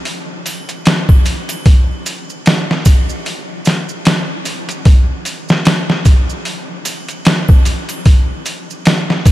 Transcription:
0.05 open hi-hat, maracas
0.46 open hi-hat, triangle, maracas
0.69 closed hi-hat, maracas
0.85 snare, open hi-hat, maracas
1.09 kick, triangle
1.26 open hi-hat, maracas
1.49 closed hi-hat, triangle, maracas
1.66 kick, open hi-hat, maracas
2.06 open hi-hat, maracas
2.30 maracas
2.46 snare, open hi-hat, maracas
2.71 snare
2.85 kick, open hi-hat, triangle, maracas
3.09 maracas
3.26 open hi-hat, maracas
3.65 snare, open hi-hat, maracas
3.89 maracas
4.05 snare, open hi-hat, maracas
4.45 open hi-hat, maracas
4.69 closed hi-hat, maracas
4.85 kick, open hi-hat, maracas
5.25 open hi-hat, maracas
5.49 snare, maracas
5.65 snare, open hi-hat, maracas
5.90 snare
6.05 kick, open hi-hat, maracas
6.30 maracas
6.45 open hi-hat, maracas
6.85 open hi-hat, triangle, maracas
7.08 closed hi-hat, maracas
7.25 snare, open hi-hat, maracas
7.48 kick, triangle
7.65 open hi-hat, maracas
7.89 closed hi-hat, triangle, maracas
8.06 kick, open hi-hat, maracas
8.46 open hi-hat, maracas
8.71 maracas
8.85 snare, open hi-hat, maracas
9.10 snare
9.26 kick, open hi-hat, triangle, maracas

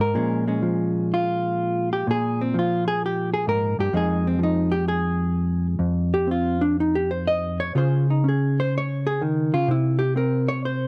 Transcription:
Already playing: G#3
0.00 G#2 A#4
0.14 A#2 F3 G#3 C#4
0.48 G#3 C#4
0.62 F3
1.14 F4
1.93 G4
2.07 A#2 G#4
2.41 C4
2.54 F3
2.59 F4
2.88 G#4
3.06 G4
3.34 G#4
3.47 G#2 A#4
3.79 G2 G4
3.93 F2 F3 G#3 D#4 G#4
4.27 C4
4.39 F3
4.43 D#4
4.72 G4
4.88 G#4
5.79 F2
6.14 G4
6.27 C4
6.31 F4
6.61 D4
6.80 D#4
6.95 G4
7.11 C5
7.27 D#5
7.60 C#5
7.75 C#3 C#4 F4 G#4 C5
8.10 D#4
8.24 C#4
8.29 G#4
8.60 C5
8.78 C#5
9.07 G#4
9.22 D#3
9.54 C#3 F4
9.68 C3 E4
9.99 G4
10.16 C4 A#4
10.48 C#5
10.65 C5

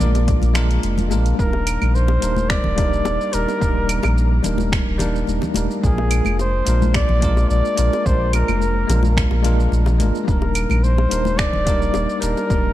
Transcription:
Already playing: D3 G#3 A#3 F4 D5
0.00 A#1 G#3 A#3 D4 F4 A#4, low conga, shaker
0.15 closed hi-hat, high bongo, shaker
0.28 kick, closed hi-hat, shaker
0.42 A#1, closed hi-hat, high conga, shaker
0.53 G#3 A#3 D4 F4 A#4, finger snap, high bongo, low conga, shaker
0.71 closed hi-hat, shaker
0.83 F1, closed hi-hat, shaker
0.98 closed hi-hat, high conga, low conga, shaker
1.08 A#1 G#3 A#3 D4 F4 A#4, high bongo, shaker
1.26 closed hi-hat, shaker
1.34 G3 A#3
1.39 D#1 D4 D#4 A#4, kick, shaker
1.53 high bongo
1.67 closed hi-hat, claves, shaker
1.82 A#1, high conga, claves, shaker
1.95 C5, shaker
2.08 high bongo
2.20 D#1 G3 A#3 D4 D#4 A#4, closed hi-hat, shaker
2.36 high conga, shaker
2.49 D5, finger snap, kick, high bongo, shaker
2.64 D#1, low conga
2.75 G3 A#3 D4 D#4 A#4, kick, closed hi-hat, shaker
2.93 shaker
3.05 D#1, high bongo, shaker
3.21 shaker
3.31 D#1 G3 A#3 D4 D#4 A#4, closed hi-hat, shaker
3.35 A#4
3.48 high bongo, shaker
3.57 G3 A#3 D4
3.61 D#1 D#4 A#4, kick, shaker
3.89 closed hi-hat, claves, shaker
4.03 A#1, high bongo, high conga, claves, shaker
4.18 shaker
4.42 D#1 G3 A#3 D4 D#4, closed hi-hat, high bongo, low conga, shaker
4.46 A#4
4.58 high conga, shaker
4.72 finger snap, kick, shaker
4.87 D#1
4.98 G3 A#3 D4 D#4 A#4, closed hi-hat, high bongo, low conga, shaker
5.16 shaker
5.27 D#1, high conga, shaker
5.42 high bongo, low conga, shaker
5.54 D#1 G3 A#3 D4 D#4 A#4, closed hi-hat, high conga, shaker
5.71 shaker
5.80 G#3 A#3 D4
5.84 A#1 F4 G#4 A#4, kick, shaker
5.98 high bongo
6.11 closed hi-hat, claves, shaker
6.25 F1, high conga, claves, shaker
6.39 C5, high bongo, shaker
6.65 A#1 G#3 A#3 D4 F4 A#4, closed hi-hat, shaker
6.82 high conga, shaker
6.94 D5, finger snap, kick, high bongo, shaker
7.09 A#1, low conga
7.20 G#3 A#3 D4 F4, kick, closed hi-hat, shaker
7.24 A#4
7.37 high bongo, shaker
7.50 A#1 D5, shaker
7.65 shaker
7.75 A#1 G#3 A#3 D4 F4 A#4, closed hi-hat, shaker
7.93 high bongo, shaker
8.02 A#1 G#3 A#3 D4 C5, kick
8.06 F4 A#4, shaker
8.33 A#4, closed hi-hat, high bongo, claves, shaker
8.48 F1, high conga, claves, shaker
8.62 shaker
8.87 A#1 G#3 A#3 D4 F4 A#4, closed hi-hat, high bongo, low conga, shaker
9.03 high conga, shaker
9.17 finger snap, kick, shaker
9.31 A#1, high bongo
9.42 G#3 A#3 D4 F4 A#4, closed hi-hat, low conga, shaker
9.60 shaker
9.72 A#1, high conga, shaker
9.86 high bongo, low conga, shaker
9.98 G#1 G#3 A#3 D4 F4, closed hi-hat, high conga, shaker
10.02 A#4
10.15 shaker
10.24 G3 A#3 D4
10.28 D#1 D#4 A#4, kick, shaker
10.42 high bongo
10.55 closed hi-hat, claves, shaker
10.70 A#1, high conga, claves, shaker
10.83 C5, shaker
10.98 high bongo
11.08 D#1 G3 A#3 D4 D#4 A#4, closed hi-hat, shaker
11.25 high conga, shaker
11.38 D5, finger snap, kick, high bongo, shaker
11.53 D#1, low conga
11.64 G3 A#3 D4 D#4 A#4, kick, closed hi-hat, shaker
11.82 shaker
11.94 D#1, high bongo, shaker
12.10 shaker
12.20 D#1 G3 A#3 D4 D#4 A#4, closed hi-hat, shaker
12.37 high bongo, shaker
12.47 D#1 G3 A#3 D4, kick, shaker
12.53 D#4 A#4

